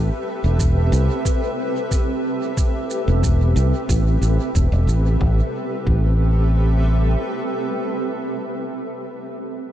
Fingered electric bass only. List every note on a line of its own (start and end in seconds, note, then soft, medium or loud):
0.44 0.89 E1 medium
0.92 1.08 C2 medium
3.08 3.53 E1 medium
3.56 3.72 C2 medium
3.89 4.18 A1 medium
4.21 4.37 A1 medium
4.55 4.71 E1 medium
4.72 4.86 E1 medium
4.87 5.17 A1 medium
5.21 5.40 A1 medium
5.87 7.15 A1 medium